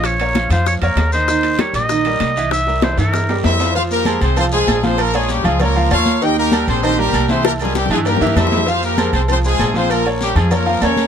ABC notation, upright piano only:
X:1
M:4/4
L:1/8
Q:1/4=195
K:Fm
V:1 name="Upright piano"
[F,Ff] [B,Bd] [F,Ff] [F,Ff]2 [B,Bd]2 [E,Ee] | [E,Ee]2 [G,GB]2 [E,Ee] [G,GB]2 [=E,=E=e]- | [=E,=E=e] [G,GB] [E,Ee] [E,Ee]2 [G,GB]2 [F,Ff] | [F,Ff]2 [A,Ac]2 [F,Ff] [A,Ac]2 [F,Ff]- |
[F,Ff] [B,Bd]2 [F,Ff] [B,Bd] [F,Ff] [B,Bd]2 | [E,Ee]2 [G,GB]2 [E,Ee] [G,GB]2 [=E,=E=e]- | [=E,=E=e] [G,GB]2 [E,Ee] [G,GB] [E,Ee] [G,GB]2 | [F,Ff]2 [A,Ac]2 [F,Ff] [A,Ac]2 [F,Ff]- |
[F,Ff] [B,Bd]2 [F,Ff] [B,Bd] [F,Ff] [B,Bd]2 |]